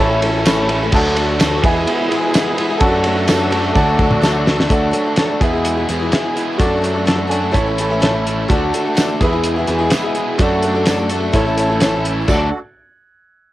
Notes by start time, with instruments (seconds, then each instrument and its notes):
Already playing: accordion E4 A4
0.00 picked electric bass A1, twelve-string acoustic guitar A2 E3 A3 C#4 E4 A4, accordion A3 C#4, upright piano A4 C#5 E5 A5
0.22 overdriven electric guitar A2 E3, twelve-string acoustic guitar A3 C#4 E4, ride
0.26 twelve-string acoustic guitar A4
0.45 twelve-string acoustic guitar A2 E3 A3 C#4 E4 A4, snare, ride, tambourine
0.69 twelve-string acoustic guitar A3 C#4 E4 A4, ride
0.82 twelve-string acoustic guitar A3 C#4 E4 A4
0.92 picked electric bass D2, twelve-string acoustic guitar D3 F#3 A3, accordion A3 D4 F#4 A4, overdriven electric guitar F#4, upright piano A4 D5 F#5 A5, kick, crash
0.96 twelve-string acoustic guitar D4 A4
1.15 twelve-string acoustic guitar F#3 A3 D4 A4, overdriven electric guitar F#4, ride
1.39 twelve-string acoustic guitar D3 F#3 A3 D4 A4, overdriven electric guitar F#4, snare, ride, tambourine
1.63 picked electric bass E2, overdriven electric guitar E2 B2 G#3, twelve-string acoustic guitar E3 B3 E4 G#4, accordion G#3 B3 E4 G#4, upright piano G#4 B4 E5 G#5, kick, ride
1.74 twelve-string acoustic guitar B3 E4 G#4
1.86 overdriven electric guitar E3 G#3 B3 G#4, ride
2.11 overdriven electric guitar E2 B2 G#3, twelve-string acoustic guitar E3 B3 E4 G#4, ride
2.34 twelve-string acoustic guitar E3 B3 E4 G#4, overdriven electric guitar G#3, snare, ride, tambourine
2.57 twelve-string acoustic guitar E3 B3 E4 G#4, overdriven electric guitar G#3, ride
2.69 twelve-string acoustic guitar B3 E4 G#4
2.78 picked electric bass F#2, twelve-string acoustic guitar F#3 A3, accordion A3 D4 F#4 A4, upright piano A4 D5 F#5 A5, kick, ride
2.82 twelve-string acoustic guitar D4 A4, overdriven electric guitar F#4
3.04 twelve-string acoustic guitar F#3 A3 D4 A4, overdriven electric guitar F#4, ride
3.27 twelve-string acoustic guitar F#3 A3 D4 A4, overdriven electric guitar F#4, snare, ride, tambourine
3.51 twelve-string acoustic guitar F#3 A3 D4 A4, overdriven electric guitar F#4, ride
3.55 overdriven electric guitar F#3
3.63 twelve-string acoustic guitar A3 D4 A4
3.73 picked electric bass D2, twelve-string acoustic guitar D3 F#3 A3 D4, accordion A3 D4 F#4 A4, upright piano A4 D5 F#5 A5, kick, high tom
3.77 overdriven electric guitar F#4, twelve-string acoustic guitar A4
3.97 overdriven electric guitar D3 F#4, twelve-string acoustic guitar F#3 A3 D4 A4, kick
4.11 mid tom
4.21 twelve-string acoustic guitar D3 F#3 A3 D4 A4, overdriven electric guitar F#4, snare, tambourine
4.46 twelve-string acoustic guitar F#3 A3 D4 A4, overdriven electric guitar F#4, snare
4.59 twelve-string acoustic guitar A3 D4 A4, snare
4.68 picked electric bass D2, twelve-string acoustic guitar D3 F#3 A3 D4 A4, accordion A3 D4 F#4 A4, upright piano A4 D5 F#5, kick, closed hi-hat
4.73 overdriven electric guitar F#4
4.91 twelve-string acoustic guitar F#3 A3 D4 A4, closed hi-hat
5.04 twelve-string acoustic guitar A3 D4 A4
5.16 twelve-string acoustic guitar D3 F#3 A3 D4 A4, snare, closed hi-hat
5.30 twelve-string acoustic guitar A3 D4 A4
5.40 picked electric bass E2, overdriven electric guitar E2 B2 G#3 G#4, twelve-string acoustic guitar E3 B3, accordion G#3 B3 E4 G#4, upright piano G#4 B4 E5, kick, closed hi-hat
5.44 twelve-string acoustic guitar E4 G#4
5.53 twelve-string acoustic guitar B3 E4 G#4
5.65 closed hi-hat
5.77 twelve-string acoustic guitar B3 E4 G#4
5.88 picked electric bass E2, twelve-string acoustic guitar E3 B3 E4 G#4, overdriven electric guitar G#3, closed hi-hat
5.99 twelve-string acoustic guitar B3 E4 G#4
6.11 overdriven electric guitar E2 B2 G#3, twelve-string acoustic guitar E3 B3 E4 G#4, snare, closed hi-hat
6.23 twelve-string acoustic guitar B3 E4 G#4
6.35 overdriven electric guitar E3 G#3 B3 G#4, closed hi-hat
6.57 picked electric bass F#2, twelve-string acoustic guitar F#3 A3 D4 A4, accordion A3 D4 F#4 A4, upright piano F#4 A4, overdriven electric guitar F#4, kick, closed hi-hat
6.61 upright piano D5
6.82 twelve-string acoustic guitar F#3 A3 D4 A4, closed hi-hat
6.94 twelve-string acoustic guitar A3 D4 A4
7.05 twelve-string acoustic guitar F#3 A3 D4 A4, snare, closed hi-hat
7.15 twelve-string acoustic guitar A3 D4 A4
7.27 twelve-string acoustic guitar F#3 A3 D4 A4, overdriven electric guitar F#4, upright piano G#5
7.31 overdriven electric guitar A3, closed hi-hat
7.40 twelve-string acoustic guitar A3 D4 A4
7.51 picked electric bass A1, twelve-string acoustic guitar A2 E3 A3 C#4 E4 A4, accordion A3, upright piano E4 A4 C#5 A5, kick, closed hi-hat
7.55 accordion C#4 E4 A4
7.66 twelve-string acoustic guitar A3 C#4 E4 A4
7.77 twelve-string acoustic guitar A3 C#4 E4 A4, closed hi-hat
7.81 overdriven electric guitar A3
7.90 twelve-string acoustic guitar A3 C#4 E4 A4
8.00 twelve-string acoustic guitar A2 E3 A3 C#4 E4 A4, upright piano E5, snare, closed hi-hat
8.12 twelve-string acoustic guitar A3 C#4 E4 A4
8.27 overdriven electric guitar A3 C#4 E4, closed hi-hat
8.48 picked electric bass D2, twelve-string acoustic guitar D3 F#3 A3 D4 A4, accordion A3 D4 F#4 A4, upright piano F#4 A4 D5, kick, closed hi-hat
8.52 overdriven electric guitar F#4
8.73 twelve-string acoustic guitar F#3 A3 D4 A4, closed hi-hat
8.85 twelve-string acoustic guitar A3 D4 A4
8.95 twelve-string acoustic guitar D3 F#3 A3 D4 A4, snare, closed hi-hat, tambourine
9.08 twelve-string acoustic guitar A3 D4 A4
9.20 picked electric bass E2, overdriven electric guitar E2 B2 G#3, twelve-string acoustic guitar E3 B3 E4 G#4, accordion G#3 B3 E4 G#4, upright piano G#4 B4 E5, kick, closed hi-hat
9.32 twelve-string acoustic guitar B3 E4 G#4
9.44 closed hi-hat
9.56 twelve-string acoustic guitar B3 E4 G#4
9.67 picked electric bass E2, twelve-string acoustic guitar E3 B3 E4 G#4, overdriven electric guitar G#3, closed hi-hat
9.78 twelve-string acoustic guitar B3 E4 G#4
9.90 overdriven electric guitar E2 B2 G#3, twelve-string acoustic guitar E3 B3 E4 G#4, snare, closed hi-hat, tambourine
10.03 twelve-string acoustic guitar B3 E4 G#4
10.15 overdriven electric guitar E3 G#3 B3 G#4, closed hi-hat
10.36 picked electric bass F#2, twelve-string acoustic guitar F#3 A3 A4, accordion A3 D4 F#4 A4, upright piano F#4, kick, closed hi-hat
10.40 twelve-string acoustic guitar D4, overdriven electric guitar F#4, upright piano A4 D5
10.62 twelve-string acoustic guitar F#3 A3 D4 A4, closed hi-hat
10.75 twelve-string acoustic guitar A3 D4 A4
10.86 twelve-string acoustic guitar F#3 A3 D4 A4, snare, closed hi-hat, tambourine
10.99 twelve-string acoustic guitar A3 D4 A4
11.09 twelve-string acoustic guitar F#3 A3 D4 A4, overdriven electric guitar F#4, closed hi-hat
11.20 twelve-string acoustic guitar A3 D4 A4
11.32 picked electric bass A1, twelve-string acoustic guitar A2 E3 A3 C#4 E4 A4, accordion A3 C#4 E4 A4, upright piano E4 A4 C#5, kick, closed hi-hat
11.45 twelve-string acoustic guitar A3 C#4 E4 A4
11.57 twelve-string acoustic guitar A3 C#4 E4 A4, closed hi-hat
11.70 twelve-string acoustic guitar A3 C#4 E4 A4
11.80 twelve-string acoustic guitar A2 E3 A3 C#4 E4 A4, snare, closed hi-hat, tambourine
11.95 twelve-string acoustic guitar A3 C#4 E4 A4
12.05 overdriven electric guitar A3 C#4 A4, closed hi-hat
12.25 picked electric bass D2, accordion A3 D4 F#4 A4, overdriven electric guitar D4, upright piano F#4 A4 D5, kick, crash
12.29 twelve-string acoustic guitar D3 F#3 A3 F#4 A4, tambourine